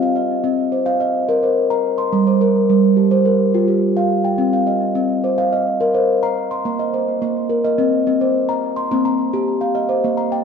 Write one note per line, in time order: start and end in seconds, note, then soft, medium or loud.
0.00 0.43 C4 medium
0.00 0.45 F5 soft
0.16 0.58 D#5 medium
0.44 0.72 C4 medium
0.72 1.15 C5 soft
0.86 1.14 F5 medium
1.00 1.43 D#5 medium
1.29 1.57 A#4 medium
1.43 1.85 C5 medium
1.70 1.99 A#5 medium
1.98 2.27 C6 soft
2.12 2.41 G3 medium
2.27 2.69 C5 soft
2.41 2.84 A#4 medium
2.70 2.98 G3 medium
2.96 3.40 G4 soft
3.11 3.40 C5 medium
3.25 3.68 A#4 medium
3.54 3.83 F4 medium
3.68 4.10 G4 soft
3.97 4.25 F5 medium
4.24 4.53 G5 medium
4.38 4.67 C4 medium
4.53 4.95 F5 medium
4.67 5.09 D#5 medium
4.95 5.23 C4 medium
5.24 5.66 C5 medium
5.38 5.66 F5 medium
5.53 5.95 D#5 medium
5.81 6.08 A#4 medium
5.94 6.37 C5 medium
6.23 6.51 A#5 medium
6.51 6.79 C6 medium
6.65 7.21 A#3 medium
6.79 7.21 D#5 medium
6.94 7.36 C5 medium
7.22 7.50 A#3 medium
7.49 7.92 A#4 medium
7.64 7.77 D#5 medium
7.78 8.06 C4 medium
7.78 8.20 D#5 medium
8.07 8.35 C4 medium
8.21 8.63 C5 medium
8.49 8.77 A#5 medium
8.76 9.05 C6 medium
8.91 9.19 A#3 medium
8.91 10.44 C4 medium
9.05 9.47 A#5 medium
9.33 9.61 G4 medium
9.61 10.03 F5 medium
9.75 10.03 D#5 medium
9.89 10.31 C5 medium
10.04 10.32 A#3 medium
10.17 10.44 A#5 medium
10.32 10.44 G5 medium